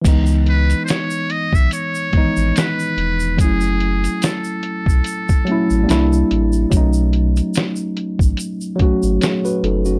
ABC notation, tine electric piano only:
X:1
M:4/4
L:1/16
Q:"Swing 16ths" 1/4=72
K:C#m
V:1 name="Tine electric piano"
z16 | z16 | z12 [Gc] [FB] [DA] [CF] |]
V:2 name="Tine electric piano"
[E,G,B,D]6 z4 [D,E,G,B,D]4- [D,E,G,B,D] z | [F,A,CE]6 z4 [F,A,CE]2 [=G,_B,=DE]4 | [F,A,CD]6 z4 [F,A,CF]4- [F,A,CF] z |]